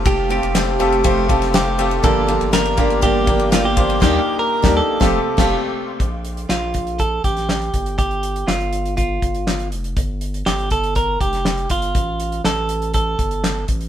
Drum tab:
CC |----------------|----------------|x----------x----|----------------|
RD |x-xxx-xxx-xxx-xx|x-xxxxxxx-xxx-xx|----------------|----------------|
HH |----------------|----------------|----------------|x-xx--xxx-xx-xxx|
CP |----x-------x---|----x-------x---|----------------|----x-------x---|
SD |----o------oo---|----o-------o---|o----o--o--o----|----o------oo---|
BD |o-------o-o-----|o-----o-o-o---o-|o----o--o--o----|o-----o-o-o---o-|

CC |----------------|----------------|----------------|
RD |----------------|----------------|----------------|
HH |xxxx-xxxx-xx-xxx|x-xx-xxxx-xx-xxx|x-xx--xxx-xx--xx|
CP |----x-------x---|----x-------x---|----x-------x---|
SD |----o-------o---|----o------oo---|----o-------o---|
BD |o-------o-o-----|o-----o-o-o---o-|o-------o-o---o-|